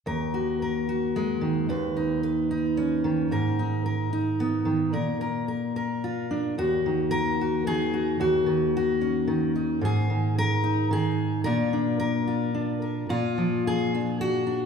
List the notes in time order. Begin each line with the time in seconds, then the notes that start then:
0.06 D#2 A#4
0.34 F#4
0.62 A#4
0.89 F#4
1.16 G#3
1.41 D#3
1.69 D#2 B4
1.97 D#4
2.23 B4
2.51 D#4
2.77 C#4
3.04 D#3
3.31 G#2 A#4
3.59 D#4
3.86 A#4
4.13 D#4
4.40 B3
4.65 D#3
4.93 A#2 A#4
5.21 A#4
5.48 A#4
5.76 A#4
6.04 F4
6.31 D4
6.58 D#2 F#4
6.86 D#3
7.11 A#4
7.41 F#4
7.67 D#3 G#4
7.94 F#4
8.20 D#2 F#4
8.46 D#3
8.77 F#4
9.01 C#4
9.28 D#3
9.56 D#4
9.81 G#2 G#4
10.10 D#3
10.38 A#4
10.64 D#4
10.91 D#3 G#4
11.44 A#2 D4 F4 A#4
11.73 D4
12.00 A#4
12.28 F4
12.55 D4
12.82 A#4
13.09 A#2 F4
13.38 F3
13.67 G#4
13.95 D4
14.21 F#4
14.47 D4